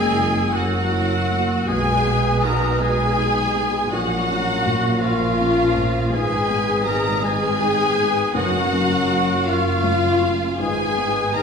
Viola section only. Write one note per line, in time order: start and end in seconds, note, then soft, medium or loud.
0.00 0.52 G#4 loud
0.52 1.65 F#4 medium
1.67 2.43 G#4 medium
2.43 2.80 F#4 medium
2.81 3.92 G#4 loud
3.90 5.01 F#4 medium
5.00 6.11 F4 medium
6.11 6.83 G#4 medium
6.84 7.20 G#4 medium
7.21 8.34 G#4 loud
8.35 9.44 F#4 loud
9.46 10.58 F4 medium
10.59 11.32 G#4 medium
11.33 11.43 G#4 medium